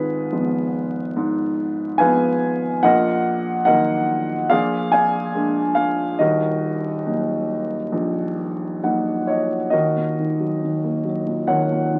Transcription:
0.00 2.79 G#1 medium
0.00 1.15 G#2 medium
0.00 1.96 F4 medium
0.00 1.96 G#4 medium
0.00 1.95 B4 medium
0.32 0.99 F3 soft
0.32 0.99 G#3 soft
0.32 1.00 B3 soft
1.16 2.80 G#2 medium
1.98 2.67 F3 soft
1.98 2.67 G#3 soft
1.98 2.67 B3 medium
1.98 2.79 B4 medium
1.98 2.79 F5 medium
1.98 2.78 G#5 medium
2.83 4.47 A#1 medium
2.83 4.47 A#2 medium
2.83 3.65 A#4 medium
2.83 3.65 D#5 medium
2.83 3.64 F#5 loud
3.65 4.34 D#3 soft
3.65 4.34 F#3 soft
3.65 4.34 A#3 medium
3.65 4.46 A#4 medium
3.65 4.46 D#5 medium
3.65 4.46 F#5 medium
4.50 6.16 A#1 medium
4.50 6.16 A#2 medium
4.50 6.16 G#4 medium
4.50 4.92 D5 medium
4.50 4.89 F5 loud
4.92 6.16 D5 medium
4.92 5.73 F5 medium
4.92 5.79 G#5 loud
5.35 6.02 G#3 medium
5.35 6.03 A#3 soft
5.35 6.03 D4 medium
5.75 6.20 F5 medium
6.19 9.70 D#1 medium
6.19 9.70 D#2 medium
6.19 8.79 F#4 medium
6.19 8.80 A#4 medium
6.19 8.78 D#5 medium
7.06 7.75 F#3 soft
7.06 7.75 A#3 soft
7.06 7.76 D#4 soft
7.92 9.69 A#1 medium
8.83 9.55 F#3 soft
8.83 9.56 A#3 soft
8.83 9.56 D#4 soft
8.83 9.26 F#5 medium
9.27 9.74 C#5 medium
9.27 9.69 D#5 medium
9.70 11.48 D#2 medium
9.70 11.44 F#4 medium
9.70 11.44 A#4 medium
9.70 10.99 D#5 medium
9.96 11.25 A#2 soft
10.19 10.61 D#3 soft
10.40 11.03 F#3 soft
10.62 11.91 D#3 soft
10.84 11.99 A#3 soft
11.05 11.99 F#3 soft
11.27 11.70 A#2 soft
11.47 11.99 D#2 medium
11.47 11.99 A#4 medium
11.47 11.99 C#5 medium
11.47 11.99 F#5 medium
11.71 11.99 A#2 soft
11.93 11.99 D#3 soft

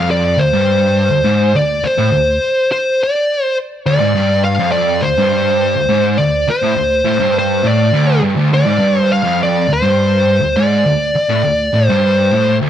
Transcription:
0.00 0.38 F2 loud
0.00 0.10 F5 loud
0.11 0.40 D5 medium
0.38 0.52 D2 medium
0.38 1.58 C5 loud
0.53 1.10 G2 loud
1.10 1.24 D2 medium
1.24 1.53 G#2 loud
1.55 1.78 D2 medium
1.55 1.85 D5 loud
1.84 2.71 C5 medium
1.84 muted distorted electric guitar stroke medium
1.98 2.12 A2 medium
2.12 2.35 D2 medium
2.72 3.01 C5 medium
3.03 3.44 D5 medium
3.44 3.56 C5 medium
3.86 4.00 D2 loud
3.86 4.44 D5 loud
4.00 4.14 G#2 medium
4.15 4.58 G2 loud
4.44 4.71 F5 loud
4.59 5.02 F2 loud
4.72 5.03 D5 medium
5.02 5.17 D2 medium
5.02 6.22 C5 loud
5.18 5.75 G2 loud
5.77 5.89 D2 medium
5.89 6.18 G#2 loud
6.18 6.42 D2 medium
6.18 6.49 D5 loud
6.48 7.37 C5 medium
6.48 muted distorted electric guitar stroke medium
6.62 6.76 A2 medium
6.76 7.00 D2 medium
7.05 7.19 A2 loud
7.20 7.63 G2 loud
7.39 7.67 C5 medium
7.64 7.93 A2 loud
7.64 8.20 D5 medium
7.93 8.22 D2 loud
8.23 8.36 G2 loud
8.37 8.51 D2 loud
8.52 8.66 D2 loud
8.52 9.00 D5 loud
8.66 8.79 G#2 loud
8.79 9.23 G2 loud
9.00 9.12 C5 loud
9.13 9.39 F5 loud
9.24 9.67 F2 loud
9.43 9.71 D5 medium
9.69 9.82 D2 medium
9.73 10.61 C5 loud
9.82 10.40 G2 loud
10.40 10.56 D2 medium
10.56 10.85 G#2 loud
10.56 11.86 D5 loud
10.86 11.09 D2 medium
11.15 muted distorted electric guitar stroke medium
11.29 11.43 A2 loud
11.44 11.67 D2 medium
11.74 11.87 A2 loud
11.86 12.31 G2 loud
11.86 12.57 C5 loud
12.32 12.60 A2 loud
12.61 12.70 D2 loud

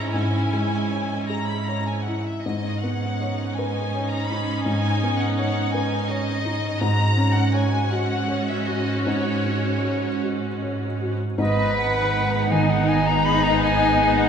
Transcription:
0.00 2.19 G#2 medium
0.00 0.16 G#3 soft
0.00 2.19 C#4 medium
0.00 0.37 E4 soft
0.00 2.19 E4 medium
0.00 0.16 G#4 soft
0.00 0.16 C#5 soft
0.00 0.13 A#5 medium
0.14 2.40 G#2 soft
0.14 1.26 G#5 medium
0.53 1.13 G#3 soft
0.91 1.51 C#5 soft
1.29 1.90 G#4 soft
1.29 1.48 A#5 soft
1.49 1.67 B5 soft
1.67 2.29 C#5 soft
1.67 1.86 A#5 soft
1.87 2.06 G#5 soft
2.04 2.44 E4 soft
2.04 2.24 F#5 soft
2.25 2.44 E5 soft
2.42 6.77 G#2 soft
2.42 4.63 G#2 soft
2.42 6.77 C#4 soft
2.42 6.77 D#4 soft
2.42 2.81 D#5 medium
2.81 3.43 B3 soft
2.81 3.56 F#5 soft
3.21 3.79 C#5 soft
3.55 4.16 B4 soft
3.55 4.10 G#5 soft
3.94 4.52 C#5 soft
4.11 4.29 A#5 medium
4.28 4.88 D#4 soft
4.28 4.65 B5 medium
4.65 6.77 G#2 soft
4.65 5.18 G#5 medium
5.03 5.59 B3 soft
5.20 5.35 F#5 medium
5.37 5.95 C#5 soft
5.37 5.72 F#5 medium
5.73 6.31 B4 soft
5.73 6.08 G#5 medium
6.08 6.67 C#5 soft
6.08 6.81 D#5 medium
6.45 6.81 D#4 soft
6.80 11.15 G#2 medium
6.80 9.03 G#2 medium
6.80 11.15 C#4 medium
6.80 11.15 F#4 medium
6.80 7.36 A#5 medium
7.17 7.77 C#4 soft
7.36 7.55 F#5 medium
7.54 8.14 C#5 soft
7.54 7.92 G#5 medium
7.91 8.52 F#4 soft
7.91 8.49 F#5 medium
8.28 8.90 C#5 soft
8.49 8.68 E5 medium
8.66 9.30 F#4 soft
8.66 9.06 D#5 medium
9.06 11.35 G#2 soft
9.06 10.21 C#5 medium
9.46 10.08 C#4 soft
9.84 10.47 C#5 soft
10.24 10.86 F#4 soft
10.62 11.24 C#5 soft
11.01 11.39 F#4 soft
11.38 14.29 G#1 medium
11.38 13.57 G#2 medium
11.38 14.29 B3 medium
11.38 14.29 D#4 medium
11.38 14.29 G#4 medium
11.38 12.48 B4 medium
11.38 11.74 D#5 medium
11.77 12.53 F#5 medium
12.51 14.29 D#3 soft
12.51 14.29 D#4 medium
12.51 12.72 G#5 medium
12.70 12.90 F#5 medium
12.88 13.08 G#5 medium
13.07 13.27 A#5 medium
13.25 13.45 B5 medium
13.43 13.61 A#5 medium
13.61 14.14 G#5 medium
14.16 14.29 F#5 medium

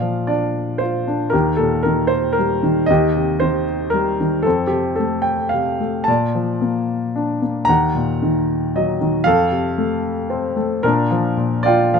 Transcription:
0.00 1.29 A#2 soft
0.00 1.04 F3 soft
0.00 0.26 D5 soft
0.00 0.29 F5 medium
0.27 1.06 D4 soft
0.27 0.82 D5 medium
0.78 1.32 F4 soft
0.78 1.34 C5 medium
1.08 1.33 D4 soft
1.30 2.85 D#2 medium
1.30 2.07 G4 soft
1.30 1.58 A#4 medium
1.57 2.59 A#2 soft
1.57 1.82 A4 medium
1.83 2.62 D#3 soft
1.83 2.11 A#4 medium
2.07 2.36 C5 medium
2.33 2.88 A#4 medium
2.39 2.88 G3 medium
2.63 2.88 D#3 soft
2.86 4.42 D#2 medium
2.86 3.35 D#5 medium
2.91 3.63 G4 medium
3.16 4.16 C3 soft
3.40 4.19 D#3 soft
3.40 3.93 C5 medium
3.90 4.44 G3 soft
3.90 4.46 A#4 medium
4.20 4.45 D#3 soft
4.43 6.04 F2 medium
4.43 5.22 C4 medium
4.43 4.71 A4 medium
4.67 5.52 C3 soft
4.67 4.97 G4 medium
4.96 5.79 A3 soft
4.96 5.25 A4 medium
5.22 5.49 G5 medium
5.49 6.02 F5 medium
5.54 6.07 C3 soft
5.80 6.07 A3 soft
6.04 7.65 A#2 medium
6.04 7.72 A5 medium
6.08 7.65 D5 medium
6.35 7.39 F3 soft
6.61 7.40 A#3 soft
7.16 7.67 D4 soft
7.42 7.68 A#3 soft
7.65 9.22 D#2 medium
7.65 9.21 A#5 medium
7.69 9.23 F#5 medium
7.95 8.98 A#2 soft
8.22 9.00 D#3 soft
8.76 9.25 F#3 soft
8.76 9.23 D#5 medium
9.01 9.26 D#3 soft
9.24 10.79 F2 medium
9.24 10.80 A4 medium
9.24 10.87 F5 medium
9.51 10.53 C3 soft
9.78 10.55 A3 soft
10.30 10.82 C4 medium
10.56 10.82 A3 soft
10.83 11.36 A#2 medium
10.83 11.90 D4 medium
10.83 11.89 A#4 medium
11.11 11.92 F3 soft
11.37 12.00 A#2 soft
11.63 12.00 F4 medium
11.63 12.00 D5 medium
11.63 11.92 G5 medium
11.94 12.00 F3 medium
11.94 12.00 F5 medium

